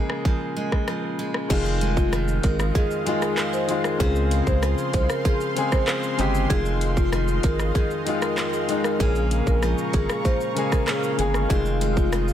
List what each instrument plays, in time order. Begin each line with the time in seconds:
Already playing: steel-string acoustic guitar A#2 F3 G#3, grand piano C#3 A#3 G#4
0.10 cross-stick
0.25 steel-string acoustic guitar F3, kick
0.56 steel-string acoustic guitar G#3
0.72 kick, cross-stick
0.88 steel-string acoustic guitar F3, cross-stick
1.19 steel-string acoustic guitar G#3
1.34 cross-stick
1.48 sub bass F1, steel-string acoustic guitar F2 C4, grand piano D#3 G#3 F4, marimba G#4, analog synth pad G#4 D#5 F5 C6, kick, crash, shaker
1.65 shaker
1.81 steel-string acoustic guitar G#3, closed hi-hat, shaker
1.97 marimba F4, kick, shaker
2.13 steel-string acoustic guitar D#3, cross-stick, shaker
2.28 shaker
2.43 sub bass G#1, steel-string acoustic guitar G#3, marimba A#4, kick, closed hi-hat, shaker
2.60 cross-stick, shaker
2.75 steel-string acoustic guitar D#3, marimba G#4, kick, shaker
2.91 shaker
3.05 grand piano D#3 G#3 F4, steel-string acoustic guitar G#3, closed hi-hat, shaker
3.22 marimba G#4, cross-stick, shaker
3.38 steel-string acoustic guitar C4, cross-stick, clap, shaker
3.53 marimba C5, shaker
3.67 grand piano D#3 G#3 F4, steel-string acoustic guitar G#3, closed hi-hat, shaker
3.84 marimba A#4, cross-stick, shaker
3.98 sub bass C#2, grand piano C#3 C4 F4, steel-string acoustic guitar C#3 C4, marimba G#4, analog synth pad C5 F5, kick, shaker
4.15 shaker
4.31 steel-string acoustic guitar G#3, closed hi-hat, shaker
4.47 sub bass C#2, marimba C5, kick, shaker
4.63 steel-string acoustic guitar F3, cross-stick, shaker
4.78 shaker
4.93 sub bass C2, steel-string acoustic guitar G#3, marimba C5, kick, closed hi-hat, shaker
5.10 marimba A#4, cross-stick, shaker
5.25 steel-string acoustic guitar F3, marimba G#4, kick, shaker
5.41 shaker
5.55 grand piano C#3 C4 G#4, steel-string acoustic guitar G#3, closed hi-hat, shaker
5.72 marimba C5, kick, cross-stick, shaker
5.87 steel-string acoustic guitar C4, cross-stick, clap, shaker
6.03 shaker
6.17 sub bass G1, grand piano C#3 C4 G4, steel-string acoustic guitar G#3, closed hi-hat, shaker
6.35 shaker
6.48 sub bass F1, steel-string acoustic guitar F2 C4, grand piano D#3 G#3 F4, analog synth pad G#3 D#5 F5, marimba G#4, kick, shaker
6.65 shaker
6.81 steel-string acoustic guitar G#3, closed hi-hat, shaker
6.97 marimba F4, kick, shaker
7.13 steel-string acoustic guitar D#3, cross-stick, shaker
7.28 shaker
7.43 sub bass G#1, steel-string acoustic guitar G#3, marimba A#4, kick, closed hi-hat, shaker
7.59 cross-stick, shaker
7.75 steel-string acoustic guitar D#3, marimba G#4, kick, shaker
7.91 shaker
8.05 grand piano D#3 G#3 F4, steel-string acoustic guitar G#3, closed hi-hat, shaker
8.22 marimba A#4, cross-stick, shaker
8.38 steel-string acoustic guitar C4, cross-stick, clap, shaker
8.53 marimba G#4, shaker
8.67 grand piano D#3 G#3 D#4, steel-string acoustic guitar G#3, closed hi-hat, shaker
8.84 marimba A#4, cross-stick, shaker
8.98 sub bass A#1, steel-string acoustic guitar A#2 C#4, grand piano C#3 A#3 G#4, marimba G#4, analog synth pad A#5 C#6, kick, shaker
9.15 shaker
9.31 steel-string acoustic guitar G#3, closed hi-hat, shaker
9.47 sub bass A#1, marimba A#4, kick, shaker
9.63 steel-string acoustic guitar F3, cross-stick, shaker
9.78 shaker
9.93 sub bass G#1, steel-string acoustic guitar G#3, marimba G#4, kick, closed hi-hat, shaker
10.09 marimba G#4, cross-stick, shaker
10.25 steel-string acoustic guitar F3, marimba C5, kick, shaker
10.41 shaker
10.55 grand piano C#3 A#3 G#4, steel-string acoustic guitar G#3, closed hi-hat, shaker
10.72 marimba A#4, kick, cross-stick, shaker
10.88 steel-string acoustic guitar C#4, marimba G#4, cross-stick, clap, shaker
11.03 shaker
11.17 sub bass G1, grand piano C#3 A#3 G#4, steel-string acoustic guitar G#3, marimba G#4, closed hi-hat, shaker
11.34 cross-stick, shaker
11.48 sub bass F1, steel-string acoustic guitar F2 C4, grand piano D#3 G#3 F4, marimba G#4, analog synth pad C6 D#6, kick, shaker
11.65 shaker
11.81 steel-string acoustic guitar G#3, closed hi-hat, shaker
11.97 marimba F4, kick, shaker
12.13 steel-string acoustic guitar D#3, cross-stick, shaker
12.28 shaker